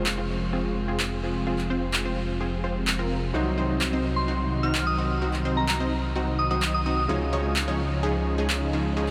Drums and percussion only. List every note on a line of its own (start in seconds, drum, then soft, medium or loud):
0.06 clap loud
1.00 clap loud
1.58 clap soft
1.94 clap loud
2.87 clap loud
3.81 clap loud
4.75 clap loud
5.34 clap soft
5.69 clap loud
6.62 clap loud
7.56 clap loud
8.50 clap loud